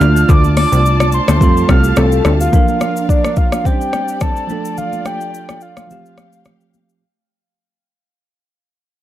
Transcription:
0.00 0.25 D2 loud
0.00 1.37 A3 medium
0.00 1.38 D4 medium
0.00 1.40 F4 medium
0.00 1.39 F4 medium
0.00 1.40 D5 medium
0.00 2.51 A5 medium
0.00 0.31 F6 loud
0.00 high conga medium
0.00 shaker medium
0.16 shaker medium
0.29 0.66 D2 loud
0.29 0.57 D6 loud
0.29 kick loud
0.29 low conga medium
0.29 shaker medium
0.44 high conga medium
0.44 shaker soft
0.57 1.10 D6 loud
0.57 cross-stick medium
0.57 open hi-hat medium
0.57 high conga medium
0.57 shaker medium
0.72 1.20 C2 medium
0.72 shaker medium
0.86 shaker medium
1.00 cross-stick loud
1.00 high conga medium
1.00 shaker medium
1.12 1.72 C6 loud
1.12 shaker medium
1.28 1.42 D2 medium
1.28 cross-stick loud
1.28 high conga medium
1.28 shaker loud
1.38 1.65 F2 loud
1.38 2.49 G3 medium
1.38 2.50 A3 medium
1.38 2.51 C4 medium
1.38 2.51 F4 medium
1.38 2.52 G4 medium
1.38 2.52 F5 medium
1.38 kick medium
1.38 low conga medium
1.38 shaker medium
1.43 2.52 A4 medium
1.57 shaker medium
1.69 1.93 C2 loud
1.69 1.97 F6 medium
1.69 kick medium
1.69 cross-stick loud
1.69 high conga medium
1.69 shaker medium
1.84 shaker medium
1.96 2.21 C2 loud
1.96 2.38 A4 medium
1.96 cross-stick loud
1.96 high conga medium
1.96 low conga medium
1.96 shaker medium
2.12 shaker soft
2.25 2.49 D2 loud
2.25 cross-stick medium
2.25 high conga medium
2.25 shaker medium
2.41 2.67 F5 medium
2.41 shaker medium
2.51 3.62 F3 medium
2.51 3.63 A#3 medium
2.51 3.64 D4 medium
2.51 3.63 D4 medium
2.51 3.64 A#4 medium
2.51 3.64 F5 medium
2.51 kick loud
2.51 low conga medium
2.51 shaker medium
2.56 3.64 A#4 medium
2.68 3.07 F5 loud
2.68 high conga medium
2.68 shaker soft
2.81 cross-stick medium
2.81 high conga medium
2.81 shaker medium
2.96 shaker medium
3.09 3.39 D5 loud
3.09 kick loud
3.09 shaker medium
3.25 cross-stick medium
3.25 high conga medium
3.25 shaker medium
3.36 3.67 F5 loud
3.36 kick medium
3.36 shaker medium
3.52 cross-stick loud
3.52 high conga medium
3.52 shaker medium
3.64 4.49 G3 medium
3.64 4.49 C4 medium
3.64 3.73 C#4 soft
3.64 4.49 G4 medium
3.64 4.50 C5 medium
3.64 5.87 D5 medium
3.64 4.23 G5 loud
3.64 kick medium
3.64 low conga medium
3.64 shaker medium
3.72 4.49 D4 medium
3.81 shaker medium
3.93 cross-stick medium
3.93 high conga medium
3.93 shaker medium
4.08 shaker medium
4.20 4.77 A5 loud
4.20 kick medium
4.20 cross-stick medium
4.20 high conga medium
4.20 low conga medium
4.20 shaker medium
4.36 shaker soft
4.47 5.85 F3 medium
4.47 5.86 A3 medium
4.47 6.99 A3 medium
4.47 5.87 D4 medium
4.47 5.88 F4 medium
4.47 high conga medium
4.47 shaker medium
4.52 5.88 A4 medium
4.65 shaker medium
4.78 5.07 F5 loud
4.78 low conga medium
4.78 shaker medium
4.93 high conga medium
4.93 shaker soft
5.05 5.64 G5 loud
5.05 cross-stick medium
5.05 high conga medium
5.05 shaker medium
5.21 shaker medium
5.34 shaker medium
5.49 cross-stick medium
5.49 high conga medium
5.49 shaker medium
5.61 6.46 F5 medium
5.61 shaker medium
5.77 cross-stick medium
5.77 high conga medium
5.77 shaker medium
5.87 6.98 F3 medium
5.87 6.99 A3 medium
5.87 7.00 C4 medium
5.87 7.01 G4 medium
5.87 7.01 F5 medium
5.87 low conga medium
5.87 shaker medium
5.92 7.01 G4 medium
6.06 shaker soft
6.18 cross-stick medium
6.18 high conga medium
6.18 shaker medium
6.33 shaker medium
6.45 cross-stick medium
6.45 high conga medium
6.45 low conga medium
6.45 shaker medium
6.61 shaker soft
6.74 high conga medium
6.74 shaker medium
6.89 shaker medium

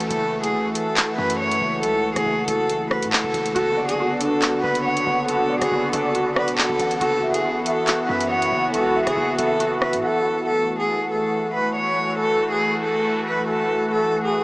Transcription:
0.00 3.52 E3 medium
0.00 3.52 A3 medium
0.00 6.97 F#4 medium
0.00 closed hi-hat medium
0.10 0.55 F#1 loud
0.10 0.42 A4 loud
0.10 closed hi-hat medium
0.44 0.73 G#4 medium
0.44 closed hi-hat medium
0.54 0.74 A1 loud
0.75 1.16 A4 medium
0.75 closed hi-hat loud
0.97 clap loud
0.97 closed hi-hat medium
1.18 1.60 F#2 loud
1.18 1.37 B4 medium
1.30 closed hi-hat medium
1.40 1.81 C#5 loud
1.51 closed hi-hat medium
1.62 1.85 F#1 loud
1.83 2.15 C#2 loud
1.83 2.14 A4 loud
1.83 closed hi-hat medium
2.16 2.26 F#1 loud
2.16 2.46 G#4 loud
2.16 cross-stick medium
2.16 closed hi-hat medium
2.26 2.47 F#1 loud
2.48 3.04 F#1 loud
2.48 2.88 A4 loud
2.48 closed hi-hat loud
2.69 closed hi-hat medium
2.91 3.10 B4 medium
2.91 cross-stick loud
3.02 3.14 A2 loud
3.02 closed hi-hat medium
3.13 3.24 F#1 loud
3.13 3.53 A4 medium
3.13 clap loud
3.24 3.34 F#1 loud
3.34 3.55 F#1 loud
3.34 closed hi-hat medium
3.46 closed hi-hat medium
3.55 4.44 F#1 loud
3.55 6.98 D3 medium
3.55 6.98 B3 medium
3.55 3.98 F#4 loud
3.55 3.87 A4 loud
3.55 closed hi-hat medium
3.77 4.85 D5 medium
3.89 4.19 G#4 medium
3.89 closed hi-hat medium
4.00 4.40 F#4 loud
4.20 5.28 D4 medium
4.20 4.61 A4 medium
4.20 closed hi-hat medium
4.42 4.55 C#2 loud
4.42 5.27 F#4 medium
4.42 clap loud
4.42 closed hi-hat medium
4.53 4.63 F#1 loud
4.63 5.05 F#1 loud
4.63 5.71 B4 medium
4.63 4.82 B4 medium
4.75 closed hi-hat medium
4.85 5.26 C#5 medium
4.85 5.05 F#5 medium
4.97 closed hi-hat medium
5.07 5.52 F#1 loud
5.07 6.15 F#5 medium
5.28 5.70 F#4 loud
5.28 5.60 A4 loud
5.28 closed hi-hat medium
5.50 5.61 E1 loud
5.50 5.92 D5 medium
5.61 5.71 F#1 loud
5.61 5.91 G#4 medium
5.61 cross-stick medium
5.61 closed hi-hat medium
5.72 5.92 F#1 loud
5.72 6.13 F#4 medium
5.93 6.49 F#1 loud
5.93 6.34 A4 medium
5.93 6.34 D5 medium
5.93 closed hi-hat loud
6.15 6.99 F#4 medium
6.15 closed hi-hat medium
6.36 6.55 B4 medium
6.36 7.01 D5 medium
6.36 cross-stick loud
6.48 6.59 E1 loud
6.48 closed hi-hat medium
6.58 6.69 F#1 loud
6.58 6.98 A4 medium
6.58 6.78 F#5 medium
6.58 clap loud
6.69 6.79 F#1 loud
6.80 7.00 A1 loud
6.80 7.01 F#5 medium
6.80 closed hi-hat medium
6.91 closed hi-hat medium
7.01 7.46 F#1 loud
7.01 10.43 E3 medium
7.01 10.43 B3 medium
7.01 7.43 F#4 loud
7.01 10.43 F#4 loud
7.01 7.32 A4 loud
7.01 closed hi-hat medium
7.23 7.65 E5 medium
7.34 7.64 G#4 medium
7.34 closed hi-hat medium
7.44 7.65 A1 loud
7.44 7.86 F#4 medium
7.66 8.06 A4 medium
7.66 8.08 E5 medium
7.66 closed hi-hat loud
7.88 8.73 F#4 medium
7.88 clap loud
7.88 closed hi-hat medium
8.09 8.51 F#2 loud
8.09 8.28 B4 medium
8.09 8.94 E5 medium
8.21 closed hi-hat medium
8.30 8.71 C#5 medium
8.30 8.51 F#5 loud
8.42 closed hi-hat medium
8.52 8.75 F#1 loud
8.52 9.60 F#5 medium
8.74 9.05 C#2 loud
8.74 9.15 F#4 loud
8.74 9.05 A4 loud
8.74 closed hi-hat medium
8.95 9.37 E5 medium
9.07 9.16 F#1 loud
9.07 9.37 G#4 medium
9.07 cross-stick medium
9.07 closed hi-hat medium
9.16 9.38 F#1 loud
9.16 9.58 F#4 medium
9.38 9.95 F#1 loud
9.38 9.79 A4 medium
9.38 9.80 E5 medium
9.38 closed hi-hat loud
9.60 10.46 F#4 loud
9.60 closed hi-hat medium
9.82 10.01 B4 medium
9.82 10.47 E5 medium
9.82 cross-stick loud
9.93 10.03 A2 loud
9.93 closed hi-hat medium
10.03 10.44 A4 loud
10.03 10.24 F#5 medium
10.25 10.47 F#5 medium
10.46 14.44 E3 medium
10.46 14.44 A3 medium
10.46 14.44 F#4 medium
10.46 10.77 A4 loud
10.80 11.09 G#4 medium
11.11 11.52 A4 medium
11.54 11.73 B4 medium
11.76 12.17 C#5 medium
12.19 12.50 A4 loud
12.52 12.82 G#4 medium
12.84 13.24 A4 medium
13.27 13.46 B4 medium
13.49 13.89 A4 medium
13.92 14.23 A4 loud
14.25 14.44 G#4 medium

